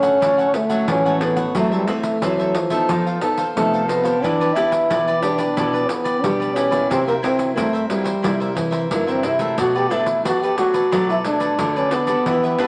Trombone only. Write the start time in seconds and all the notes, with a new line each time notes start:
Already playing: C#4
0.55 A3
0.89 C#4
1.22 B3
1.56 A3
1.74 G3
1.89 A3
2.24 F#3
2.56 F3
3.56 A3
3.89 B3
4.23 D4
4.55 E4
5.22 D4
5.89 B3
6.23 D4
6.55 C#4
6.90 C4
7.07 A#3
7.23 C4
7.57 A3
7.89 G3
8.92 A#3
9.10 C4
9.26 E4
9.60 F#4
9.77 G4
9.92 E4
10.26 F#4
10.43 G4
10.59 F#4
11.11 E4
11.26 D4
11.77 C#4
11.92 B3